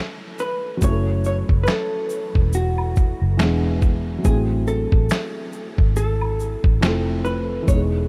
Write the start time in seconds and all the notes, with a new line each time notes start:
Already playing: E3 A3 C#4 E4 A4 C#5
0.39 B4, shaker
0.77 F#3 A3
0.81 F#1 C#4 C#5, kick, shaker
0.87 E4 A4
1.24 C#5, shaker
1.49 F#1, kick
1.63 B4, shaker
1.68 A4, finger snap, snare
2.10 shaker
2.35 E1, kick
2.53 F#4, shaker
2.78 high woodblock
2.96 kick, shaker
3.22 F#1
3.37 E1 E3 G#3 B3, finger snap, snare, shaker
3.42 D4 G#4
3.82 kick, shaker
4.18 F#3 A3
4.25 A1 C4 E4 G#4, kick, shaker
4.31 F#4
4.67 A4, shaker
4.92 A1, kick
5.09 finger snap, snare, shaker
5.53 shaker
5.78 G#1, kick
5.96 A4, shaker
6.21 high woodblock
6.40 shaker
6.64 A1, kick
6.81 F1 F3 A3 C4, finger snap, snare, shaker
6.86 E4 A4
7.25 B4, shaker
7.62 E3 G#3
7.68 E1 B3 D#4 C#5, kick, shaker
7.76 G#4